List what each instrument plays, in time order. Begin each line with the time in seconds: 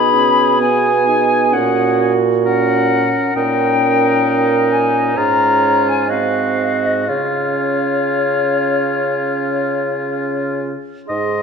Already playing: bassoon B2, french horn D#4, clarinet G#4, oboe G#4, flute B5
0.15 french horn C#4
0.61 french horn B3, flute G#5
1.07 french horn D#4
1.53 bassoon A#2, french horn C#4, clarinet F#4, flute F#5
2.45 french horn C#4, oboe A#4, flute F#5
3.35 bassoon A#2, french horn C#4, oboe D#4, clarinet A#4, flute G5
4.71 flute G#5
5.15 bassoon G#2, french horn C#4, oboe F4, clarinet C#5, flute A#5
5.88 flute G#5
6.08 french horn C4, oboe F#4, clarinet D#5, flute F5
6.86 flute D#5
7.06 bassoon C#3, french horn C#4, oboe F4, flute C#5, clarinet F5
11.06 bassoon G#2, french horn D#4, clarinet G#4, oboe D#5, flute C6